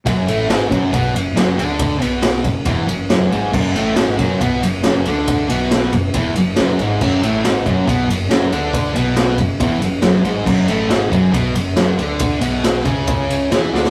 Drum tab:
CC |----------------|----------------|x---------------|----------------|
RD |x-x-x-x-x-x-x-x-|x-x-x-x-x-x-x-x-|--x-x-x-x-x-x-x-|x-x-x-x-x-x-x-x-|
SD |----o-------o---|----o-------o---|----o-------o---|----o-------o---|
BD |o-----o-o-------|o-----o-o-------|o-----o-o-------|o-----o-o-------|

CC |x---------------|----------------|x---------------|----------------|
RD |--x-x-x-x-x-x-x-|x-x-x-x-x-x-x-x-|--x-x-x-x-x-x-x-|x-x-x-x-x-x-x---|
SD |----o-------o---|----o-------o---|----o-------o---|----o-------o-oo|
BD |o-----o-o-------|o-----o-o-------|o-----o-o-------|o-----o-o-------|